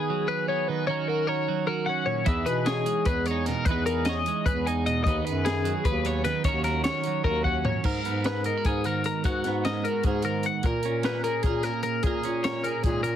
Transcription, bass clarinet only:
2.27 E2
2.47 B2
3.06 E2
3.66 E2
4.46 E2
5.07 D#2
5.27 F#2
5.86 D#2
6.45 D#2
7.25 D#2
7.84 G#2
8.05 G#2
8.65 G#2
9.26 G#2
9.45 G#2
10.05 G#2
10.64 A#2
10.85 A#2
11.44 A#2
12.04 A#2
12.25 A#2
12.85 A#2

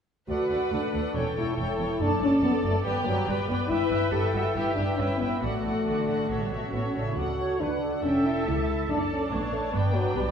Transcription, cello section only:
0.28 D2
0.50 D2
0.72 D2
0.94 D2
1.15 E2
1.37 E2
1.57 E2
1.79 E2
1.99 F#2
2.21 F#2
2.41 F#2
2.63 F#2
2.84 G2
3.05 G2
3.26 G2
3.48 G2
3.70 G2
3.91 G2
4.12 G2
4.34 G2
4.55 G2
4.78 G2
4.99 G2
5.20 G2
5.42 A2
5.64 A2
5.86 D3
6.29 B2
6.73 A2
6.95 C#3
7.16 D2
7.60 D3
8.04 E2
8.46 C#2
8.89 F#2
9.31 A2
9.73 G2
10.16 B2

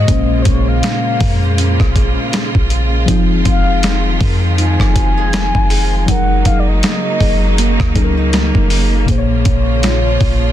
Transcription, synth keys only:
Already playing: G#3
0.06 A#2 G#3 C#4
0.11 C5
3.06 F3 C4 D#4
3.11 G#4
6.06 F#3 D#4 G#4
6.12 A#4
7.95 F#3 D#4 G#4 A4
8.04 A#4
9.06 A#2 A#3 G#4
9.11 C5
9.18 C#5

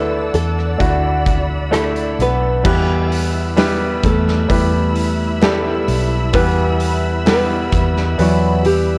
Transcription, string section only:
Already playing: D5 F#5 A5 E6
0.80 B5
2.64 E4 E5 B5 E6

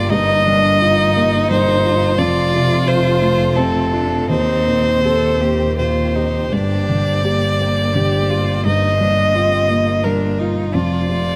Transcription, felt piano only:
Already playing: D3 A#3 G4
0.11 G2
0.47 G3
0.81 F4
1.16 A#3
1.51 G3
1.85 F4
2.18 F2
2.53 C3
2.87 F4
3.22 A3
3.57 C3
3.93 F4
4.29 D#2
4.67 A#2
5.04 G4
5.41 A#3
5.78 A#2
6.16 G4
6.52 G2
6.89 D3
7.25 G4
7.60 A#3
7.95 D3
8.30 G4
8.65 G2
9.01 G3
9.35 F4
9.70 A#3
10.05 G3
10.40 F4
10.74 F2
11.09 C3

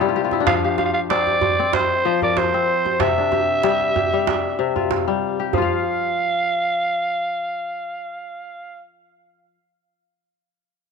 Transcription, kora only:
Already playing: C3 G4 A4 A#4 C5
0.01 G3 E4
0.09 F4
0.16 G4
0.24 F4
0.33 E4
0.40 D4
0.47 F3
0.64 G4
0.79 C5
1.11 C4 C5
1.42 C5
1.59 C4
2.05 F3
2.22 A#4
2.54 C4
2.86 C5
3.01 C3
3.18 D4
3.33 G4
3.64 G3 G4
3.96 G4
4.13 G3
4.59 C3
4.76 F4
5.08 G3
5.40 G4
5.54 F3 F4
5.62 F5

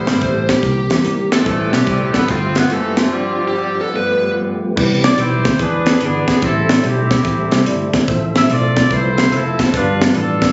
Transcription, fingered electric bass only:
0.08 G1
0.22 A1
0.63 C2
0.90 E2
1.05 G#1
1.46 A1
1.73 B1
1.87 C2
2.14 A1
2.28 G1
2.69 F#1
4.77 C2
5.18 B1
5.45 D2
5.59 E2
6.01 G1
6.28 G#1
6.42 A1
6.84 B1
7.25 A1
7.52 C2
7.66 G1
7.93 G#1
8.08 A1
8.49 B1
8.91 C2
9.31 F1
9.59 F#1
9.74 G1
10.14 A1

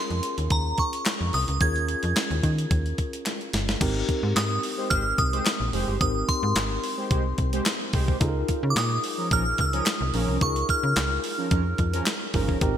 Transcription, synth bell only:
Already playing: C6
0.52 A#5
0.79 C#6
1.34 D#6
1.61 G#6
4.36 D#6
4.90 F6
5.18 D#6
6.01 D#6
6.28 C6
8.70 D6
8.78 D#6
9.33 F6
9.61 D#6
10.42 C#6
10.70 F6

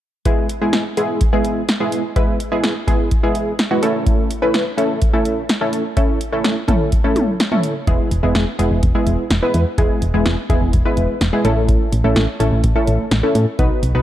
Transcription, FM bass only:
7.87 E1
8.11 E1
8.23 E1
8.35 E1
8.59 E1
8.71 E1
8.83 E1
9.07 E1
9.30 E1
9.54 E2
9.78 E1
10.02 E1
10.14 E1
10.26 E1
10.50 E1
10.62 E1
10.74 E1
10.97 E1
11.21 E1
11.45 A1
11.92 A1
12.04 A1
12.16 A1
12.40 A1
12.52 A1
12.64 A1
12.87 A1
13.11 A1
13.35 A2
13.59 B1
13.83 B1
13.95 B1

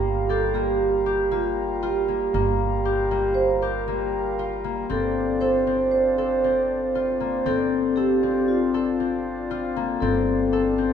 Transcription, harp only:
Already playing: A#3 F4 G4
0.30 G4
0.55 A#3
1.06 G4
1.31 A#3
1.83 F4
2.08 A#3
2.34 A#3
2.85 G4
3.11 A#3
3.62 G4
3.88 A#3
4.39 F4
4.64 A#3
4.90 C4
5.41 A4
5.67 C4
6.18 A4
6.44 C4
6.95 F4
7.20 A#3
7.46 C4
7.97 A4
8.23 C4
8.74 A4
9.00 C4
9.51 F4
9.76 A#3
10.02 C4
10.53 A4
10.78 C4

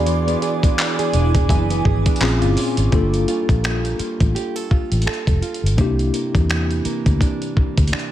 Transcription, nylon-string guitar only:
Already playing: G#4
0.06 E3
0.27 B3
0.42 G#4
0.63 D4
0.78 B3
0.99 G#4
1.14 D4
1.35 G#4
1.49 E3
1.70 B3
1.85 G#4
2.06 D4
2.21 A#2
2.41 F4
2.57 C#4
2.77 F4
2.92 G3
3.28 F4
3.64 A#3
3.99 F4
4.35 G4
4.56 A4
4.71 F4
5.06 A4
5.42 F4
5.78 C3
6.14 A#3
6.49 E3
6.85 A#3
7.21 D4
7.57 A#3
7.92 D4

